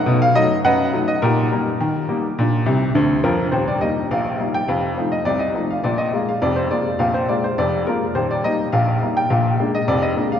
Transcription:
<<
  \new Staff \with { instrumentName = "Upright piano" } { \time 2/4 \key ees \major \tempo 4 = 104 fis''16 f''16 dis''8 <b' dis'' fis''>8. dis''16 | <ees' g' bes'>2~ | <ees' g' bes'>4 r8 bes'8 | c''16 d''16 ees''8 f''8. g''16 |
f''8. ees''16 d''16 ees''8 f''16 | d''16 ees''8 f''16 d''16 c''16 d''8 | f''16 c''16 d''16 c''16 d''8 bes'8 | c''16 d''16 ees''8 f''8. g''16 |
f''8. ees''16 d''16 ees''8 f''16 | }
  \new Staff \with { instrumentName = "Upright piano" } { \clef bass \time 2/4 \key ees \major <b, dis'>8 <fis a dis'>8 fis,8 <fis a dis'>8 | bes,8 <g bes ees'>8 ees8 <g bes ees'>8 | <bes, d'>8 <c, c>8 <d, d>8 <f, f>8 | <ees,, ees,>8 <g bes ees'>8 <bes,, bes,>8 <g bes ees'>8 |
<f,, f,>8 <f a ees'>8 <c, c>8 <f a ees'>8 | <bes,, bes,>8 <aes bes f'>8 <f,, f,>8 <aes bes f'>8 | <bes,, bes,>8 <aes bes f'>8 <f,, f,>8 <aes bes f'>8 | <ees,, ees,>8 <g bes ees'>8 <bes,, bes,>8 <g bes ees'>8 |
<bes,, bes,>8 <aes bes d'>8 <f,, f,>8 <aes bes d'>8 | }
>>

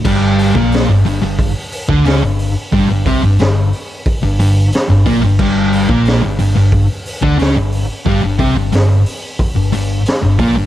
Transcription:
<<
  \new Staff \with { instrumentName = "Distorted electric guitar" } { \clef bass \time 4/4 \key g \dorian \tempo 4 = 90 <g, g>8. <bes, bes>8 g,16 g,16 g,8 r8 <d d'>16 <cis cis'>16 g,8 r16 | <g, g>16 g,16 <c c'>16 g,16 g,8 r8. g,16 g,8 r16 g,16 <bes, bes>16 g,16 | <g, g>8. <bes, bes>8 g,16 g,16 g,8 r8 <d d'>16 <cis cis'>16 g,8 r16 | <g, g>16 g,16 <c c'>16 g,16 g,8 r8. g,16 g,8 r16 g,16 <bes, bes>16 g,16 | }
  \new Staff \with { instrumentName = "Distorted electric guitar" } { \clef bass \time 4/4 \key g \dorian <g, g>8. <bes, bes>8 g,16 g,16 g,8 r8 <d d'>16 <cis cis'>16 g,8 r16 | <g, g>16 g,16 <c c'>16 g,16 g,8 r8. g,16 g,8 r16 g,16 <bes, bes>16 g,16 | <g, g>8. <bes, bes>8 g,16 g,16 g,8 r8 <d d'>16 <cis cis'>16 g,8 r16 | <g, g>16 g,16 <c c'>16 g,16 g,8 r8. g,16 g,8 r16 g,16 <bes, bes>16 g,16 | }
  \new Staff \with { instrumentName = "Picked electric bass" } { \clef bass \time 4/4 \key g \dorian g,,8. bes,,8 g,,16 g,,16 g,,8 r8 d,16 cis,16 g,,8 r16 | g,,16 g,,16 c,16 g,,16 g,,8 r8. g,,16 g,,8 r16 g,,16 bes,,16 g,,16 | r8. bes,,8 r16 g,,16 g,,8 r8 d,16 cis,16 g,,8 r16 | g,,16 g,,16 c,16 g,,16 g,,8 r8. g,,16 g,,8 r16 g,,16 bes,,16 g,,16 | }
  \new DrumStaff \with { instrumentName = "Drums" } \drummode { \time 4/4 <cymc bd>8 hho16 bd16 <hho sn>8 hho8 <hho bd>8 hho16 bd16 <hho sn>8 hho8 | <hho bd>8 <hho bd>8 <hho sn>8 hho8 <hho bd>8 hho8 <hho sn>8 <hho bd>8 | <cymc bd>8 hho16 bd16 <hho sn>8 hho8 <hho bd>8 hho16 bd16 <hho sn>8 hho8 | <hho bd>8 <hho bd>8 <hho sn>8 hho8 <hho bd>8 hho8 <hho sn>8 <hho bd>8 | }
>>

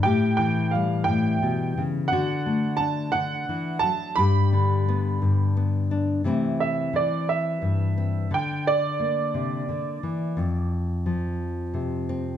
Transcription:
<<
  \new Staff \with { instrumentName = "Upright piano" } { \time 6/8 \key c \major \tempo 4. = 58 g''8 g''8 f''8 g''4 r8 | fis''4 a''8 fis''4 a''8 | b''2 r4 | r8 e''8 d''8 e''4. |
g''8 d''2~ d''8~ | d''8 r2 r8 | }
  \new Staff \with { instrumentName = "Nylon-string guitar" } { \clef bass \time 6/8 \key c \major << { g'4 g2 | fis'4 d'2 | g'4 b4 b8 d'8 | <e a c' e'>2~ <e a c' e'>8 c'8 |
r2. | r2 r8 c'8 | } \\ { a,8 e4 a,8 b,8 cis8 | d8 a4 d8 e8 fis8 | g,8 d4 g,4. | c4 e4 g,4 |
d4 bes8 c8 d8 e8 | f,4 f4 c4 | } >> }
>>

